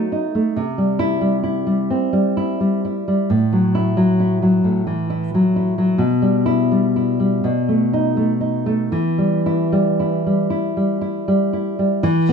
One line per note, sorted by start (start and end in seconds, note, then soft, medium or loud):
0.00 0.23 F#3 medium
0.00 0.34 A3 medium
0.00 0.11 D#4 medium
0.12 0.57 D#4 soft
0.35 0.57 A3 soft
0.56 1.88 C3 medium
0.78 1.20 G3 soft
0.99 1.37 E4 medium
1.21 1.65 G3 soft
1.43 2.36 E4 soft
1.67 2.12 G3 medium
1.90 2.94 C4 medium
2.13 2.59 G3 soft
2.37 2.83 E4 medium
2.60 3.07 G3 medium
2.85 3.30 E4 soft
3.08 3.30 G3 soft
3.30 4.61 A2 medium
3.53 3.96 F#3 medium
3.75 4.10 E4 medium
3.97 4.41 F#3 medium
4.20 5.09 E4 soft
4.42 4.86 F#3 soft
4.64 5.98 A2 medium
4.87 5.34 E3 medium
5.10 5.55 E4 medium
5.34 5.77 F#3 medium
5.56 6.02 E4 soft
5.78 6.01 F#3 soft
5.98 7.39 B2 medium
6.22 6.70 G3 soft
6.46 6.85 E4 medium
6.72 7.18 G3 soft
6.96 7.45 E4 soft
7.20 7.45 G3 soft
7.44 8.88 B2 medium
7.69 8.16 A3 soft
7.93 8.32 D#4 medium
8.17 8.65 A3 soft
8.41 8.92 D#4 soft
8.66 8.92 A3 soft
8.92 10.46 E3 medium
9.18 9.71 G3 soft
9.46 9.88 E4 medium
9.72 10.25 G3 soft
10.00 10.49 E4 soft
10.26 10.76 G3 soft
10.50 11.00 E4 soft
10.77 11.27 G3 soft
11.01 11.52 E4 medium
11.28 11.78 G3 medium
11.53 12.04 E4 soft
11.79 12.04 G3 soft
12.03 12.33 E3 medium
12.29 12.33 B3 medium